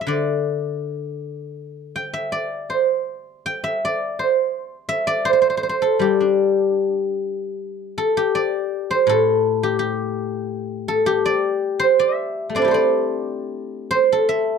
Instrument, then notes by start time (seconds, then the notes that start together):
guzheng
Already playing: C5
0.01 E5
0.07 D3 D5
1.96 G5
2.13 E5
2.32 D5
2.70 C5
3.46 G5
3.64 E5
3.85 D5
4.19 C5
4.89 E5
5.07 D5
5.25 C5
5.33 C5
5.42 C5
5.50 C5
5.57 C5
5.63 C5
5.69 C5
5.82 A4
5.99 G3 G4
6.20 D4
7.98 A4
8.17 G4
8.35 D5
8.91 C5
9.07 A2 A4
9.63 G4
9.79 G4
10.88 A4
11.06 G4
11.26 D5
11.79 C5
11.99 E5
12.50 A3
12.55 C4 D4 D5
12.62 E4 G4
12.68 A4 C5
12.74 D5
13.91 C5
14.12 A4
14.29 E5